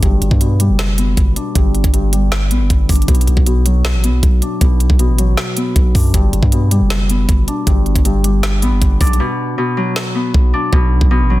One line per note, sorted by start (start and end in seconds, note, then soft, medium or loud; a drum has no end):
0.00 0.21 G1 loud
0.00 0.46 G2 medium
0.00 0.98 B3 medium
0.00 1.36 D4 medium
0.00 kick loud
0.00 closed hi-hat medium
0.22 0.31 G1 loud
0.22 closed hi-hat medium
0.31 0.71 G2 loud
0.31 kick medium
0.41 1.60 B2 medium
0.41 closed hi-hat medium
0.60 2.11 G3 medium
0.60 closed hi-hat medium
0.69 1.15 F#1 loud
0.79 snare loud
0.79 closed hi-hat medium
0.98 2.51 B3 medium
0.98 closed hi-hat medium
1.17 1.36 G1 loud
1.17 kick loud
1.17 closed hi-hat medium
1.36 2.89 D4 medium
1.36 closed hi-hat medium
1.55 1.83 G1 loud
1.55 1.92 G2 medium
1.55 kick loud
1.55 closed hi-hat medium
1.75 closed hi-hat soft
1.84 2.52 G1 loud
1.84 kick medium
1.84 closed hi-hat medium
1.94 3.13 G2 medium
1.94 closed hi-hat medium
2.13 3.13 G3 medium
2.13 closed hi-hat medium
2.32 snare loud
2.32 closed hi-hat medium
2.51 2.62 A1 loud
2.51 4.03 B3 medium
2.51 closed hi-hat medium
2.61 2.70 G1 loud
2.70 2.88 G1 loud
2.70 kick loud
2.70 closed hi-hat medium
2.89 3.08 G1 loud
2.89 4.42 D4 medium
2.89 kick loud
2.89 closed hi-hat soft
2.89 open hi-hat medium
2.96 closed hi-hat soft
3.02 closed hi-hat medium
3.08 3.27 B1 loud
3.08 3.45 B2 loud
3.08 kick loud
3.08 closed hi-hat medium
3.15 closed hi-hat medium
3.21 closed hi-hat medium
3.27 3.36 B1 loud
3.27 closed hi-hat medium
3.37 3.96 B1 loud
3.37 kick medium
3.46 4.60 B2 medium
3.46 closed hi-hat medium
3.66 5.17 F#3 medium
3.66 closed hi-hat medium
3.85 snare loud
3.85 closed hi-hat medium
3.94 4.10 A1 loud
4.04 5.57 B3 medium
4.04 closed hi-hat medium
4.09 4.22 B1 loud
4.23 4.41 B1 loud
4.23 kick loud
4.23 closed hi-hat medium
4.42 5.95 D4 medium
4.42 closed hi-hat medium
4.61 4.89 B1 loud
4.61 4.98 B2 medium
4.61 kick loud
4.61 closed hi-hat medium
4.80 closed hi-hat medium
4.90 5.10 B1 loud
4.90 kick medium
4.99 6.19 B2 medium
4.99 closed hi-hat medium
5.09 5.36 A1 loud
5.19 6.19 F#3 medium
5.19 closed hi-hat medium
5.37 snare loud
5.37 closed hi-hat medium
5.57 7.09 B3 medium
5.57 closed hi-hat medium
5.76 5.94 B1 loud
5.76 kick loud
5.76 closed hi-hat medium
5.95 6.13 F#2 loud
5.95 7.47 D4 medium
5.95 kick loud
5.95 open hi-hat medium
6.14 6.32 G1 loud
6.14 6.57 G2 medium
6.14 kick loud
6.14 closed hi-hat medium
6.33 6.42 G1 loud
6.33 closed hi-hat medium
6.43 6.82 G2 loud
6.43 kick medium
6.52 7.72 B2 medium
6.52 closed hi-hat medium
6.71 8.23 G3 medium
6.71 closed hi-hat medium
6.81 7.26 F#1 loud
6.90 snare loud
6.90 closed hi-hat medium
7.09 8.62 B3 medium
7.09 closed hi-hat medium
7.29 7.47 G1 loud
7.29 kick loud
7.29 closed hi-hat medium
7.48 9.00 D4 medium
7.48 closed hi-hat medium
7.67 7.94 G1 loud
7.67 8.04 G2 loud
7.67 kick loud
7.67 closed hi-hat medium
7.86 closed hi-hat soft
7.95 8.64 G1 loud
7.95 kick medium
7.95 closed hi-hat medium
8.05 9.25 G2 medium
8.05 closed hi-hat medium
8.24 9.25 G3 medium
8.24 closed hi-hat medium
8.43 snare loud
8.43 closed hi-hat medium
8.62 8.73 A1 medium
8.62 10.15 B3 medium
8.62 closed hi-hat medium
8.72 8.81 G1 loud
8.82 9.00 G1 loud
8.82 kick loud
8.82 closed hi-hat medium
9.01 9.20 B1 loud
9.01 10.53 D4 medium
9.01 kick loud
9.01 closed hi-hat soft
9.01 open hi-hat medium
9.07 closed hi-hat soft
9.13 closed hi-hat medium
9.20 9.57 B2 medium
9.58 10.71 B2 medium
9.77 11.29 F#3 medium
9.96 snare loud
10.15 11.40 B3 medium
10.34 10.53 B1 loud
10.34 kick loud
10.54 11.40 D4 medium
10.73 11.00 B1 loud
10.73 11.10 B2 medium
10.73 kick loud
11.01 11.22 B1 loud
11.01 kick medium
11.11 11.40 B2 medium
11.20 11.40 A1 loud
11.30 11.40 F#3 medium